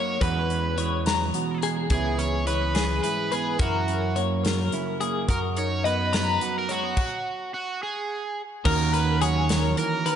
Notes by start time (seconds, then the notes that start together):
Already playing: F#2 F#3 A#3 D#4 F#4 C#5
0.21 E2 E3 G#3 C#4 F#4 B4, kick, closed hi-hat
0.50 C#4, closed hi-hat
0.78 E3 G#3 C#5, closed hi-hat
1.06 A#5, snare, closed hi-hat
1.34 B2 F#4, closed hi-hat
1.63 G#3 G#4, closed hi-hat
1.90 C#2 C#3 E3 B3 C#4 E4 G#4, kick, closed hi-hat
2.19 C#4 C#5, closed hi-hat
2.47 E3 G#3 B4 C#5, closed hi-hat
2.61 B3
2.75 G#4, snare, closed hi-hat
3.03 G#2 E4 B4, closed hi-hat
3.32 B3 G#4 B4, closed hi-hat
3.59 F#2 E4 F#4 A#4, kick, closed hi-hat
3.88 C#4, closed hi-hat
4.16 F#3 A#3 C#5, closed hi-hat
4.44 A#4, snare, closed hi-hat
4.72 C#3 E4, closed hi-hat
5.01 A#3 G#4, closed hi-hat
5.28 F#2 F#4 A#4, kick, closed hi-hat
5.57 D#4 C#5, closed hi-hat
5.84 F#3 B3 B4 D#5, closed hi-hat
6.13 B4 A#5, snare, closed hi-hat
6.41 F#2 F#4, closed hi-hat
6.58 A#4
6.69 G#3 F#4 C#5, closed hi-hat
6.83 B3
6.97 kick, crash
7.54 F#4
7.83 G#4
8.64 D#2 D#3 A#3 C#4 F#4 A#4, kick, crash
8.94 C#4 B4, closed hi-hat
9.21 F#3 F#4 G#4 C#5, closed hi-hat
9.49 F#3 A#4, snare, closed hi-hat
9.77 E3 A#4, closed hi-hat
10.06 D#3 B4, closed hi-hat